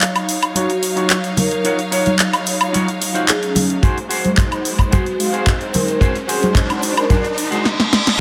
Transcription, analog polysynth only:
0.00 0.39 F#3 medium
0.00 0.39 D#4 medium
0.00 0.40 C#5 medium
0.00 0.39 F5 medium
0.42 0.57 F#3 medium
0.42 0.57 D#4 medium
0.42 0.57 F4 medium
0.42 0.57 C#5 medium
0.83 1.21 F#3 medium
0.83 1.21 D#4 medium
0.83 1.22 F5 medium
1.24 1.62 F#3 medium
1.24 1.62 D#4 medium
1.24 1.62 C#5 medium
1.24 1.62 F5 medium
1.65 1.80 F#3 medium
1.65 1.80 D#4 medium
1.65 1.80 F4 medium
1.65 1.80 C#5 medium
2.05 2.57 F#3 medium
2.05 2.57 D#4 medium
2.05 2.58 C#5 loud
2.05 2.57 F5 medium
2.60 2.74 F#3 medium
2.60 2.75 D#4 medium
2.60 2.75 F4 medium
2.60 2.75 C#5 medium
3.01 3.39 F#3 medium
3.01 3.39 D#4 medium
3.01 3.39 F5 medium
3.41 3.80 F#3 medium
3.41 3.80 C#4 medium
3.41 3.80 D#4 medium
3.41 3.80 F5 medium
3.82 3.97 G#3 medium
3.82 3.98 D#4 medium
3.82 3.98 F#4 medium
3.82 3.98 C5 medium
4.24 4.75 G#3 medium
4.24 4.76 D#4 medium
4.24 4.76 F#4 medium
4.24 4.76 C5 loud
4.78 4.93 G#3 medium
4.78 4.93 D#4 medium
4.78 4.93 F#4 medium
4.78 4.93 C5 medium
5.19 5.57 G#3 medium
5.19 5.57 D#4 medium
5.19 5.58 F#4 medium
5.19 5.58 F5 medium
5.60 5.98 G#3 medium
5.60 5.98 D#4 medium
5.60 5.98 F#4 medium
5.60 5.98 C5 medium
6.00 6.16 G#3 medium
6.00 6.16 D#4 medium
6.00 6.16 F#4 medium
6.00 6.16 C5 medium
6.41 6.93 G#3 medium
6.41 6.94 D#4 medium
6.41 6.94 F#4 medium
6.41 6.94 C5 loud
6.96 7.11 G#3 medium
6.96 7.11 D#4 medium
6.96 7.11 F#4 medium
6.96 7.11 C5 medium
7.51 7.65 G#3 medium
7.51 7.65 D#4 medium
7.51 7.65 F#4 medium
7.51 7.66 C5 medium

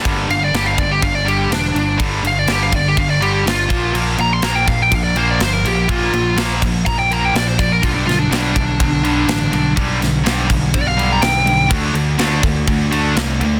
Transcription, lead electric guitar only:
0.31 0.42 F5 medium
0.44 0.54 D5 medium
0.55 0.66 G4 medium
0.66 0.78 F5 medium
0.79 0.90 D5 medium
0.91 1.02 G4 medium
1.03 1.15 F5 medium
1.15 1.26 D5 medium
1.28 1.51 G4 medium
1.53 1.99 D4 medium
2.27 2.39 F5 medium
2.39 2.49 D5 medium
2.52 2.62 G4 medium
2.62 2.73 F5 medium
2.75 2.86 D5 medium
2.88 2.98 G4 medium
2.98 3.09 F5 loud
3.10 3.21 D5 medium
3.23 3.45 G4 medium
3.48 3.94 F4 loud
4.21 4.33 A#5 loud
4.33 4.44 C6 medium
4.43 4.55 A#5 medium
4.55 4.67 G5 medium
4.68 4.82 F5 medium
4.82 4.93 G5 loud
4.94 5.03 F5 medium
5.04 5.15 D5 loud
5.17 5.28 C5 loud
5.31 5.41 D5 medium
5.41 5.53 C5 medium
5.53 5.67 A#4 medium
5.67 5.89 G4 medium
5.90 6.36 F4 loud
6.86 6.98 A#5 loud
6.99 7.12 G5 medium
7.12 7.23 A#5 loud
7.25 7.35 G5 medium
7.35 7.47 D5 medium
7.48 7.59 C5 medium
7.59 7.71 D5 medium
7.72 7.83 A#4 medium
7.84 7.94 F4 medium
7.94 8.06 D4 medium
8.07 8.19 F4 medium
8.19 8.29 D4 loud
8.30 9.73 D4 medium
10.74 10.87 D5 loud
10.87 11.10 F5 loud
11.13 11.22 A#5 medium
11.22 11.69 G5 loud

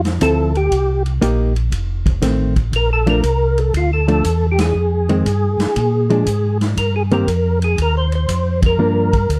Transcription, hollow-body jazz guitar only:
0.21 0.52 F3 soft
0.21 0.52 C4 medium
0.21 0.52 E4 medium
0.21 0.52 A4 medium
1.22 1.52 A#3 medium
1.22 1.52 D#4 medium
1.22 1.53 G4 medium
2.22 2.53 D#3 medium
2.22 2.53 A3 medium
2.22 2.53 C4 medium
3.07 3.22 F3 medium
3.07 3.22 A3 medium
3.07 3.22 D4 medium
4.08 4.23 F3 medium
4.08 4.23 A3 medium
4.08 4.23 D4 medium
5.09 5.24 D#3 medium
5.09 5.24 G#3 medium
5.09 5.25 C4 medium
6.10 6.25 F3 soft
6.10 6.25 G#3 medium
6.10 6.25 D4 medium
7.12 7.26 D#3 medium
7.12 7.26 A#3 medium
7.12 7.26 C4 medium
7.12 7.27 G4 medium
8.79 9.09 F3 soft
8.79 9.10 A#3 medium
8.79 9.10 D4 medium

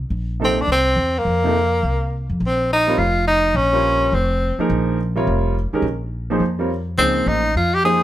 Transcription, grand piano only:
0.40 0.56 C3 medium
0.40 0.56 F3 medium
0.40 0.56 A#3 medium
0.40 0.56 D#4 medium
0.40 0.57 A4 medium
1.43 1.53 C3 medium
1.43 1.54 F3 medium
1.43 1.54 A#3 medium
1.43 1.54 D#4 medium
1.43 1.55 A4 medium
2.87 2.97 G3 medium
2.87 2.97 C4 medium
2.87 2.98 F4 medium
2.87 2.98 A#4 medium
2.87 2.98 C#5 medium
3.73 4.10 G3 medium
3.73 4.11 F4 medium
3.73 4.11 A#4 medium
3.73 4.11 C5 medium
3.73 4.11 C#5 medium
4.59 4.96 F3 medium
4.59 4.97 A#3 medium
4.59 4.97 D#4 medium
4.59 4.97 G#4 medium
4.59 4.97 A#4 medium
5.16 5.54 C3 medium
5.16 5.53 G3 medium
5.16 5.54 F4 medium
5.16 5.54 A#4 medium
5.16 5.54 C#5 medium
5.73 5.83 D#3 medium
5.73 5.83 G#3 medium
5.73 5.84 C#4 medium
5.73 5.84 G4 medium
5.73 5.84 A#4 medium
6.30 6.40 F3 medium
6.30 6.40 A#3 medium
6.30 6.41 D#4 medium
6.30 6.41 G#4 medium
6.30 6.41 C5 medium
6.59 6.69 G3 medium
6.59 6.69 C4 medium
6.59 6.69 F4 medium
6.59 6.69 A#4 medium
6.59 6.70 C#5 medium
6.98 7.41 F3 medium
6.98 7.41 A#3 medium
6.98 7.41 D#4 medium
6.98 7.41 G#4 medium
6.98 7.41 C5 medium
7.84 8.00 F3 medium
7.84 8.00 A#3 soft
7.84 8.00 D#4 medium
7.84 8.00 G#4 medium
7.84 8.01 C5 medium

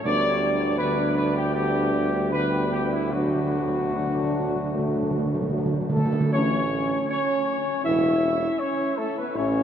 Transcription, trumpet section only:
0.05 0.76 D5 loud
0.79 1.14 B4 medium
1.17 1.35 B4 medium
1.37 1.54 G4 medium
1.55 2.29 G4 medium
2.32 2.69 B4 medium
2.72 2.91 G4 medium
2.93 3.11 E4 medium
3.11 5.52 F#4 medium
5.93 6.30 A4 medium
6.33 7.05 C#5 medium
7.10 7.81 C#5 medium
7.85 8.56 E5 medium
8.59 8.97 C#5 medium
8.98 9.16 A4 medium
9.18 9.35 B4 medium
9.36 9.63 C#5 medium

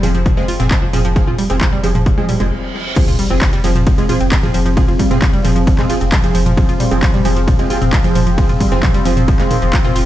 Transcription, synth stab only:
0.03 0.10 F3 medium
0.03 0.10 C4 medium
0.03 0.10 G#4 medium
0.37 0.44 F3 medium
0.37 0.44 C4 medium
0.37 0.44 G#4 medium
0.60 0.67 F3 medium
0.60 0.67 C4 medium
0.60 0.67 G#4 medium
0.93 1.01 F3 medium
0.93 1.01 C4 medium
0.93 1.01 G#4 medium
1.16 1.27 F3 medium
1.16 1.27 C4 medium
1.16 1.27 G#4 medium
1.50 1.57 F3 medium
1.50 1.57 C4 medium
1.50 1.57 G#4 medium
1.84 1.91 F3 medium
1.84 1.91 C4 medium
1.84 1.91 G#4 medium
2.18 2.25 F3 medium
2.18 2.25 C4 medium
2.18 2.25 G#4 medium
2.40 2.47 F3 medium
2.40 2.47 C4 medium
2.40 2.47 G#4 medium
2.96 3.08 F3 medium
2.96 3.08 C4 medium
2.96 3.08 G#4 medium
3.30 3.37 F3 medium
3.30 3.37 C4 medium
3.30 3.37 G#4 medium
3.64 3.71 F3 medium
3.64 3.71 C4 medium
3.64 3.71 G#4 medium
3.98 4.05 F3 medium
3.98 4.05 C4 medium
3.98 4.05 G#4 medium
4.09 4.16 F3 medium
4.09 4.16 C4 medium
4.09 4.16 G#4 loud
4.43 4.54 F3 medium
4.43 4.54 C4 medium
4.43 4.54 G#4 medium
4.77 4.88 F3 medium
4.77 4.88 C4 medium
4.77 4.88 G#4 medium
5.11 5.18 F3 medium
5.11 5.18 C4 medium
5.11 5.18 G#4 medium
5.45 5.52 F3 medium
5.45 5.52 C4 medium
5.45 5.52 G#4 medium
5.78 5.85 F3 medium
5.78 5.85 C4 medium
5.78 5.85 G#4 loud
5.90 5.97 F3 medium
5.90 5.97 C4 medium
5.90 5.97 G#4 loud
6.24 6.35 F3 medium
6.24 6.35 C4 medium
6.24 6.35 G#4 medium
6.57 6.69 F3 medium
6.57 6.69 C4 medium
6.57 6.69 G#4 medium
6.91 6.98 F3 medium
6.91 6.98 C4 medium
6.91 6.98 G#4 medium
7.25 7.32 F3 medium
7.25 7.32 C4 medium
7.25 7.32 G#4 medium
7.59 7.66 F3 medium
7.59 7.66 C4 medium
7.59 7.66 G#4 medium
7.70 7.77 F3 medium
7.70 7.77 C4 medium
7.70 7.77 G#4 loud
8.04 8.15 F3 medium
8.04 8.15 C4 medium
8.04 8.15 G#4 medium
8.38 8.49 F3 medium
8.38 8.49 C4 medium
8.38 8.49 G#4 medium
8.72 8.79 F3 medium
8.72 8.79 C4 medium
8.72 8.79 G#4 medium
9.06 9.13 F3 medium
9.06 9.13 C4 medium
9.06 9.13 G#4 medium
9.39 9.46 F3 medium
9.39 9.46 C4 medium
9.39 9.46 G#4 medium
9.85 9.91 F3 medium
9.85 9.91 C4 medium
9.85 9.91 G#4 medium

